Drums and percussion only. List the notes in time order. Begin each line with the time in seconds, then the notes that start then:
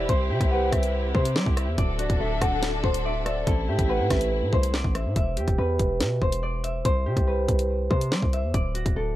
0.09 kick, closed hi-hat
0.41 kick, closed hi-hat
0.72 kick, cross-stick, closed hi-hat
0.83 closed hi-hat
1.15 kick
1.25 closed hi-hat
1.36 snare
1.46 kick
1.57 cross-stick, closed hi-hat
1.78 kick, closed hi-hat
1.99 closed hi-hat
2.10 kick, closed hi-hat
2.41 kick, cross-stick, closed hi-hat
2.63 snare, closed hi-hat
2.84 kick
2.94 closed hi-hat
3.26 cross-stick, closed hi-hat
3.47 kick, closed hi-hat
3.79 kick, closed hi-hat
4.10 kick, cross-stick, snare, closed hi-hat
4.21 closed hi-hat
4.53 kick
4.63 closed hi-hat
4.74 snare
4.84 kick
4.95 cross-stick, closed hi-hat
5.16 kick, closed hi-hat
5.37 closed hi-hat
5.48 kick, closed hi-hat
5.79 kick, closed hi-hat
6.00 snare, closed hi-hat
6.22 kick
6.32 closed hi-hat
6.64 closed hi-hat
6.85 kick, closed hi-hat
7.17 kick, closed hi-hat
7.48 kick, closed hi-hat
7.59 closed hi-hat
7.91 kick
8.01 closed hi-hat
8.12 snare
8.22 kick
8.33 closed hi-hat
8.54 kick, closed hi-hat
8.75 closed hi-hat
8.86 kick, closed hi-hat